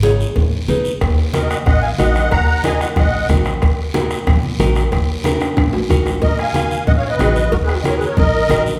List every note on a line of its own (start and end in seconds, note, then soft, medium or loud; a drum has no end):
0.00 0.23 G#1 loud
0.00 0.26 D#4 medium
0.00 0.26 G#4 medium
0.00 0.26 C#5 medium
0.00 high conga loud
0.00 short guiro medium
0.20 short guiro medium
0.36 0.62 D#2 medium
0.36 cowbell medium
0.36 high conga soft
0.36 low conga medium
0.36 long guiro medium
0.68 0.95 D#2 medium
0.68 0.91 D#4 medium
0.68 0.91 G#4 medium
0.68 0.92 B4 medium
0.68 high conga medium
0.68 low conga medium
0.68 short guiro medium
0.85 short guiro medium
1.01 1.54 D#2 loud
1.01 bombo low medium
1.01 bombo rim medium
1.01 cowbell loud
1.01 high conga soft
1.01 long guiro medium
1.33 1.56 D#4 medium
1.33 1.56 F#4 medium
1.33 1.57 A#4 medium
1.33 1.49 A#4 medium
1.33 1.48 D#5 medium
1.33 bombo rim medium
1.33 high conga medium
1.33 short guiro medium
1.49 1.57 D#5 medium
1.49 1.56 F#5 medium
1.49 bombo rim medium
1.49 short guiro medium
1.66 1.93 A#1 medium
1.66 1.82 D#5 medium
1.66 1.82 F#5 medium
1.66 bombo low medium
1.66 bombo rim medium
1.66 cowbell medium
1.66 high conga soft
1.66 low conga medium
1.66 long guiro medium
1.82 1.90 F5 medium
1.82 1.90 G#5 medium
1.98 2.25 A#1 medium
1.98 2.22 D#4 medium
1.98 2.22 F#4 medium
1.98 2.22 A#4 medium
1.98 2.29 D#5 medium
1.98 2.30 F#5 medium
1.98 bombo rim medium
1.98 high conga medium
1.98 low timbale medium
1.98 short guiro medium
2.15 bombo rim medium
2.15 short guiro medium
2.31 2.84 D#2 loud
2.31 2.46 F#5 medium
2.31 2.46 A#5 loud
2.31 bombo low medium
2.31 bombo rim medium
2.31 cowbell loud
2.31 high conga soft
2.31 long guiro medium
2.47 2.63 F#5 medium
2.47 2.64 A#5 loud
2.64 2.87 D#4 medium
2.64 2.87 F#4 medium
2.64 2.87 A#4 medium
2.64 2.80 D#5 medium
2.64 2.81 G#5 medium
2.64 bombo rim medium
2.64 high conga medium
2.64 short guiro medium
2.81 2.88 D#5 medium
2.81 2.89 F#5 medium
2.81 bombo rim medium
2.81 short guiro medium
2.96 3.23 A#1 medium
2.96 3.28 D#5 medium
2.96 3.28 F#5 medium
2.96 bombo low medium
2.96 bombo rim medium
2.96 cowbell medium
2.96 high conga soft
2.96 low conga medium
2.96 long guiro medium
3.29 3.56 A#1 medium
3.29 3.52 D#4 medium
3.29 3.52 F#4 medium
3.29 3.52 A#4 medium
3.29 bombo low medium
3.29 bombo rim medium
3.29 high conga medium
3.29 low conga medium
3.29 low timbale medium
3.29 short guiro medium
3.45 bombo rim medium
3.45 short guiro medium
3.62 4.14 D#2 medium
3.62 bombo low medium
3.62 bombo rim medium
3.62 cowbell loud
3.62 high conga soft
3.62 long guiro medium
3.94 4.17 D#4 medium
3.94 4.17 F#4 medium
3.94 4.18 A#4 medium
3.94 bombo rim medium
3.94 high conga loud
3.94 short guiro medium
4.11 bombo rim medium
4.11 short guiro medium
4.27 4.54 A#1 medium
4.27 bombo low medium
4.27 bombo rim medium
4.27 cowbell medium
4.27 high conga soft
4.27 low conga medium
4.27 long guiro medium
4.43 high conga medium
4.59 4.86 A#1 medium
4.59 4.82 D#4 medium
4.59 4.82 F#4 medium
4.59 4.82 A#4 medium
4.59 bombo rim medium
4.59 high conga medium
4.59 low timbale medium
4.59 short guiro medium
4.75 bombo rim medium
4.75 short guiro medium
4.92 5.45 D#2 loud
4.92 bombo low medium
4.92 bombo rim medium
4.92 cowbell loud
4.92 high conga soft
4.92 long guiro medium
5.24 5.47 D#4 medium
5.24 5.48 F#4 medium
5.24 5.48 A#4 medium
5.24 bombo rim medium
5.24 high conga loud
5.24 high timbale medium
5.24 short guiro medium
5.41 bombo rim medium
5.41 high timbale medium
5.41 short guiro medium
5.57 5.84 A#1 medium
5.57 bombo low medium
5.57 bombo rim medium
5.57 cowbell medium
5.57 high conga soft
5.57 low conga medium
5.57 high timbale medium
5.57 long guiro medium
5.73 low timbale medium
5.89 6.16 A#1 medium
5.89 6.13 D#4 medium
5.89 6.13 F#4 medium
5.89 6.13 A#4 medium
5.89 bombo low medium
5.89 bombo rim medium
5.89 high conga medium
5.89 low timbale medium
5.89 short guiro medium
6.06 bombo rim medium
6.06 low timbale medium
6.06 short guiro medium
6.22 6.75 D#2 medium
6.22 6.38 A#4 medium
6.22 6.37 D#5 medium
6.22 bombo low medium
6.22 cowbell loud
6.22 high conga soft
6.22 low conga medium
6.22 long guiro medium
6.39 6.84 F5 medium
6.39 6.84 G#5 medium
6.39 bombo rim medium
6.54 6.77 D#4 medium
6.54 6.78 F#4 medium
6.54 6.78 A#4 medium
6.54 bombo rim medium
6.54 cowbell medium
6.54 high conga medium
6.54 short guiro medium
6.71 short guiro medium
6.87 7.14 A#1 medium
6.87 6.93 D#5 medium
6.87 6.92 F#5 loud
6.87 bombo low medium
6.87 cowbell medium
6.87 high conga soft
6.87 low conga medium
6.87 long guiro medium
6.97 7.08 C#5 medium
6.97 7.08 F5 medium
7.09 7.50 B4 medium
7.09 7.53 D#5 medium
7.19 7.46 A#1 medium
7.19 7.43 D#4 medium
7.19 7.43 F#4 medium
7.19 7.43 G#4 medium
7.19 bombo rim medium
7.19 cowbell medium
7.19 high conga medium
7.19 low conga medium
7.19 short guiro medium
7.36 short guiro medium
7.52 8.05 D#2 medium
7.52 7.57 F#4 medium
7.52 7.57 A#4 loud
7.52 bombo low medium
7.52 cowbell loud
7.52 high conga soft
7.52 long guiro medium
7.63 7.74 G#4 medium
7.63 7.73 B4 medium
7.69 bombo rim medium
7.74 7.78 F#4 medium
7.74 7.78 A#4 medium
7.82 8.07 D#4 medium
7.82 8.08 F#4 medium
7.82 8.08 A#4 medium
7.82 7.95 A#4 medium
7.82 7.95 C#5 medium
7.82 7.85 D#5 medium
7.82 bombo rim medium
7.82 cowbell medium
7.82 high conga medium
7.82 short guiro medium
7.97 8.07 G#4 medium
7.97 8.07 B4 medium
8.01 short guiro medium
8.06 8.17 A#4 medium
8.06 8.17 C#5 medium
8.17 8.44 A#1 loud
8.17 8.63 A#4 medium
8.17 8.63 D#5 loud
8.17 bombo low medium
8.17 cowbell medium
8.17 high conga soft
8.17 low conga loud
8.17 long guiro medium
8.49 8.76 A#1 loud
8.49 8.72 D#4 medium
8.49 8.73 F#4 medium
8.49 8.73 A#4 medium
8.49 bombo rim medium
8.49 cowbell medium
8.49 high conga medium
8.49 low conga medium
8.49 short guiro medium
8.66 short guiro medium